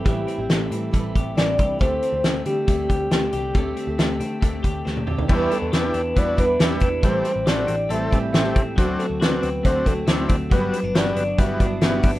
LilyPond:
<<
  \new Staff \with { instrumentName = "Soft synth lead" } { \time 4/4 \key d \mixolydian \tempo 4 = 138 g'2 r4 d''4 | c''4. g'2~ g'8~ | g'2. r4 | r8 a'8 b'4 d''8 b'4 r8 |
c''4 d''4 e''4 e''8. r16 | r8 a'8 b'4 c''8 a'4 r8 | b'4 d''4 e''4 e''8. r16 | }
  \new Staff \with { instrumentName = "Transistor combo organ" } { \time 4/4 \key d \mixolydian r1 | r1 | r1 | <d' e' g'>8 r8 <d' e' g'>8 r8 <d' e' fis'>8 r8 <d' e' g'>8 r8 |
<a c' g'>8 r8 <a c' fis'>8 r8 <a c' a'>8 r8 <a c' g'>8 r8 | <c' d' fis'>8 r8 <c' d' fis'>8 r8 <c' d' fis'>8 r8 <c' d' e'>8 r8 | <g b fis'>8 r8 <g b fis'>8 r8 <g b fis'>8 r8 <g b fis'>8 r8 | }
  \new Staff \with { instrumentName = "Clean electric guitar" } { \time 4/4 \key d \mixolydian <e a c' g'>8 c'8 a8 c'8 a8 g'8 c'8 g'8 | <a g'>8 c'8 a8 c'8 a8 g'8 c'8 g'8 | <a g'>8 c'8 a8 c'8 a8 g'8 c'8 g'8 | b8 d'8 g'8 d'8 b8 d'8 b8 d'8 |
e8 c'8 g'8 c'8 a8 c'8 a8 c'8 | fis8 c'8 fis'8 c'8 a8 c'8 a8 c'8 | fis8 c'16 d'16 fis'8 d'8 b8 d'8 b8 d'8 | }
  \new Staff \with { instrumentName = "Steel-string acoustic guitar" } { \time 4/4 \key d \mixolydian <a, e g c' e'>8. <g c' e'>8. <e g c' e'>8 <e g c' e'>4 <e g c' e'>8 <e g c' e'>8 | <d a c' g'>8. <a c' g'>8. <d a c' g'>8 <d a c' g'>4 <d a c' g'>8 <d a c' g'>8 | <d a c' g'>8. <a c' g'>8. <d a c' g'>8 <d a c' g'>4 <d a c' g'>8 <d a c' g'>8 | <e g d' e' b'>8 <g d' e' b'>8. <d' e' b'>8. <g d' e' b'>8 <e g d' e' b'>8. <e g d' e' b'>8. |
<a, e g c' g'>8 <e g c' g'>8. <g c' g'>8. <e g c' g'>8 <a, e g c' g'>8. <a, e g c' g'>8. | <d a c' fis'>8 <d a c' fis'>8. <a c' fis'>8. <d a c' fis'>8 <d a c' fis'>8. <d a c' fis'>8. | <g b d' fis'>8 <g b d' fis'>8. <b d' fis'>8. <g b d' fis'>8 <g b d' fis'>8. <g b d' fis'>8. | }
  \new Staff \with { instrumentName = "Picked electric bass" } { \clef bass \time 4/4 \key d \mixolydian a,,8 r16 a,,16 a,,8 a,8 a,,8 a,,8 a,,8 c,8 | d,8 r16 d,16 d,8 d8 d,8 d,8 d,8 c,8 | d,8 r16 d,16 d,8 d8 d,8 d,8 d,8 d,8 | e,8 r16 e,16 e,8 e,8 e,8 e,8 e,8 e,8 |
a,,8 r16 a,,16 a,,8 a,,8 a,,8 a,,8 a,,8 a,,8 | d,8 r16 d,16 d,8 d,8 d,8 d,8 d,8 d,8 | g,,8 r16 g,,16 g,,8 g,,8 g,,8 g,,8 g,,8 g,,8 | }
  \new DrumStaff \with { instrumentName = "Drums" } \drummode { \time 4/4 <hh bd>8 hh8 <hh sn>8 hh8 <hh bd>8 <hh bd>8 <hh sn>8 <hh bd>8 | <hh bd>8 hh8 <hh sn>8 hh8 <hh bd>8 <hh bd>8 <hh sn>8 hh8 | <hh bd>8 hh8 <hh sn>8 hh8 <hh bd>8 <hh bd>8 sn16 tommh16 toml16 tomfh16 | <cymc bd>8 hh8 <hh sn>8 hh8 <hh bd>8 <hh bd>8 <hh sn>8 <hh bd>8 |
<hh bd>8 hh8 <hh sn>8 hh8 hh8 <hh bd>8 <hh sn>8 <hh bd>8 | <hh bd>8 hh8 <hh sn>8 hh8 <hh bd>8 <hh bd>8 <hh sn>8 <hh bd>8 | <hh bd>8 hh8 <hh sn>8 hh8 <hh bd>8 <hh bd>8 <hh sn>8 <hho bd>8 | }
>>